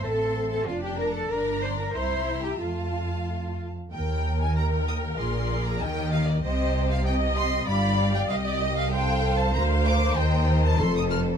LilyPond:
<<
  \new Staff \with { instrumentName = "Violin section" } { \time 2/4 \key f \major \tempo 4 = 96 a''8. a''16 f''16 g''16 bes''16 a''16 | bes''8 c'''16 bes''16 c'''8. g''16 | f''4. r8 | \key ees \major g''8. aes''16 bes''8 ees'''8 |
c'''8. bes''16 g''8 f''16 d''16 | ees''8. f''16 g''8 c'''8 | b''8. g''16 f''16 d''16 ees''16 f''16 | \key f \mixolydian g''8. a''16 bes''8 d'''8 |
g''8. a''16 c'''16 ees'''16 f'''8 | }
  \new Staff \with { instrumentName = "Violin section" } { \time 2/4 \key f \major <e'' c'''>4 <d'' a''>4 | <d'' bes''>4 <e'' bes''>4 | <f'' a''>4. r8 | \key ees \major <bes' g''>4 <bes' g''>4 |
<aes' d''>4 <g' ees''>4 | <g' ees''>4 <g' ees''>4 | <g' f''>4 <g' ees''>4 | \key f \mixolydian <a' f''>4 <bes' f''>4 |
<bes' ees''>4 <a' c''>4 | }
  \new Staff \with { instrumentName = "Viola section" } { \time 2/4 \key f \major c'4 d'4 | d'4 e'4 | a4. r8 | \key ees \major bes'2~ |
bes'2 | c''4 ees''4 | d''4 ees''4 | \key f \mixolydian c''2~ |
c''4 a'4 | }
  \new Staff \with { instrumentName = "Cello section" } { \time 2/4 \key f \major a'8. a'16 f'16 g'16 bes'16 a'16 | bes'8 c''16 bes'16 c''8. g'16 | f'4. r8 | \key ees \major ees,2 |
bes,4 ees4 | c2 | g,4 c,4~ | \key f \mixolydian c,4 d,4 |
ees,4 f,4 | }
  \new Staff \with { instrumentName = "Double bass section" } { \clef bass \time 2/4 \key f \major a,,4 f,,4 | g,,4 c,4 | f,4. r8 | \key ees \major ees,2 |
bes,,4 ees,4 | c,2 | g,,4 c,4~ | \key f \mixolydian c,4 d,4 |
ees,4 f,,4 | }
>>